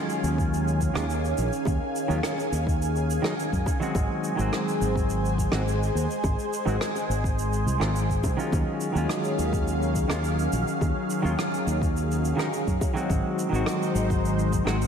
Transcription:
Already playing: D#3 F#3 G#3 C#4 F4 G#4 F5 G#5
0.10 shaker
0.23 D#2, shaker
0.38 kick, shaker
0.54 shaker
0.68 shaker
0.81 kick, shaker
0.94 D#2 D#3 F#3 G#3 C#4 F4, cross-stick, high bongo, shaker
1.10 shaker
1.25 shaker
1.38 A#1, shaker
1.53 shaker
1.65 D#2, kick, high bongo, shaker
1.96 shaker
2.08 D#2 D#3 F#3 G#3 C#4 F4, shaker
2.23 cross-stick, shaker
2.38 high bongo, shaker
2.52 D#2, shaker
2.67 kick, shaker
2.82 shaker
2.96 shaker
3.11 shaker
3.22 D#3 F#3 G#3 C#4 D#4, cross-stick, shaker
3.40 shaker
3.53 F#2, kick, shaker
3.66 kick, high bongo, shaker
3.80 D#3 F#3 G#3 C4 F#4, shaker
3.95 G#1 G#3 C5, kick, high bongo, shaker
4.24 shaker
4.35 G#1 D#3 F#3 G#3, shaker
4.40 C4 F#4
4.53 cross-stick, shaker
4.68 shaker
4.81 G#1, shaker
4.96 kick, shaker
5.10 shaker
5.25 shaker
5.38 kick, shaker
5.51 G#1 D#3 F#3 G#3 C4 F#4, cross-stick, high bongo, shaker
5.68 shaker
5.83 shaker
5.95 D#2, shaker
6.10 shaker
6.24 G#1, kick, high bongo, shaker
6.39 shaker
6.53 shaker
6.65 G#1 D#3 F#3 G#3 C4 F#4, shaker
6.81 cross-stick, shaker
6.95 high bongo, shaker
7.09 G#1, shaker
7.24 kick, shaker
7.39 shaker
7.53 shaker
7.66 C2, shaker
7.80 G#1 D#3 F#3 G#3 C4 F4, cross-stick, shaker
7.96 shaker
8.10 kick, shaker
8.23 C2, kick, high bongo, shaker
8.37 D#3 F#3 G#3 C#4 F4, shaker
8.51 D#2 D#3 F#3 C#4 F5, kick, high bongo, shaker
8.81 shaker
8.92 D#2 D#3 F#3 G#3, shaker
8.97 C#4 F4
9.09 cross-stick, shaker
9.24 shaker
9.39 D#2, shaker
9.53 kick, shaker
9.68 shaker
9.82 shaker
9.95 kick, shaker
10.08 D#2 D#3 F#3 G#3 C#4 F4, cross-stick, high bongo, shaker
10.24 shaker
10.39 shaker
10.53 A#1, shaker
10.68 shaker
10.81 D#2, kick, high bongo, shaker
11.10 shaker
11.22 D#2 D#3 F#3 G#3 C#4 F4, shaker
11.39 cross-stick, shaker
11.52 high bongo, shaker
11.67 D#2, shaker
11.82 kick, shaker
11.97 shaker
12.11 shaker
12.25 shaker
12.37 D#3 F#3 G#3 C#4 D#4, cross-stick, shaker
12.53 shaker
12.67 F#2, kick, shaker
12.81 kick, high bongo, shaker
12.94 D#3 F#3 G#3 C4 F#4, shaker
13.09 G#1 G#3 D#4 C5, kick, high bongo, shaker
13.39 shaker
13.49 G#1 D#3 F#3 G#3
13.54 C4 F#4, shaker
13.66 cross-stick, shaker
13.82 shaker
13.95 G#1, shaker
14.10 kick, shaker
14.25 shaker
14.39 shaker
14.53 kick, shaker
14.65 G#1 D#3 F#3 G#3 C4 F#4, cross-stick, high bongo, shaker
14.82 shaker

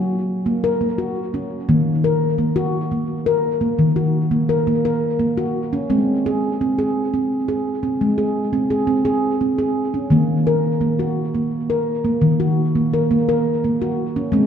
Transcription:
Already playing: F#3 F#4
0.46 A#3
0.64 A#4
0.81 A#3
0.98 F#4
1.34 C#4
1.69 D#3 A#3
2.04 A#4
2.38 A#3
2.56 F#4
2.92 A#3
3.26 A#4
3.61 A#3
3.79 D#3
3.96 F#4
4.31 A#3
4.49 A#4
4.67 A#3
4.85 A#4
5.19 A#3
5.38 F#4
5.73 C#4
5.90 G#3 C4
6.26 G#4
6.61 C4
6.79 G#4
7.14 C4
7.48 G#4
7.83 C4
8.01 G#3
8.18 G#4
8.53 C4
8.70 G#4
8.87 C4
9.05 G#4
9.41 C4
9.59 G#4
9.94 C#4
10.10 D#3 A#3
10.47 A#4
10.81 A#3
10.99 F#4
11.35 A#3
11.70 A#4
12.05 A#3
12.22 D#3
12.40 F#4
12.75 A#3
12.94 A#4
13.11 A#3
13.29 A#4
13.64 A#3
13.82 F#4
14.16 C#4
14.32 G#3 C4

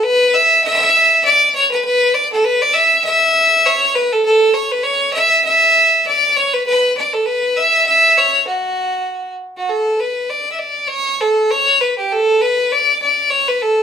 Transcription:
0.04 B4
0.34 E5
0.64 E5
1.25 D5
1.55 C#5
1.71 B4
1.85 B4
2.14 D5
2.32 A4
2.44 B4
2.62 D5
2.74 E5
3.04 E5
3.66 C#5
3.96 B4
4.12 A4
4.26 A4
4.54 C#5
4.72 B4
4.83 C#5
5.13 E5
5.44 E5
6.07 D5
6.36 C#5
6.54 B4
6.66 B4
6.97 D5
7.13 A4
7.26 B4
7.57 E5
7.86 E5
8.18 C#5
8.47 F#4
9.57 F#4
9.69 A4
10.00 B4
10.30 D5
10.52 E5
10.59 D5
10.88 C#5
11.21 A4
11.51 C#5
11.81 B4
11.98 G4
12.12 A4
12.42 B4
12.72 D5
13.02 D5
13.30 C#5
13.48 B4
13.62 A4

